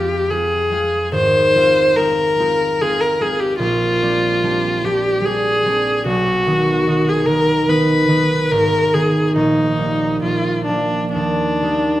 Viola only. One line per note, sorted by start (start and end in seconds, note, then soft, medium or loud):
0.00 0.32 G4 medium
0.30 1.12 G#4 medium
1.15 1.99 C5 medium
1.97 2.83 A#4 medium
2.81 3.02 G#4 medium
3.01 3.23 A#4 medium
3.22 3.41 G#4 medium
3.40 3.59 G4 medium
3.59 4.87 F4 medium
4.85 5.27 G4 medium
5.25 6.06 G#4 medium
6.07 7.10 F#4 medium
7.09 7.28 G#4 medium
7.26 7.70 A#4 medium
7.69 8.53 B4 medium
8.51 8.96 A#4 medium
8.94 9.36 G#4 medium
9.37 10.20 D#4 medium
10.23 10.64 F4 medium
10.65 11.11 D4 medium
11.12 12.00 D4 medium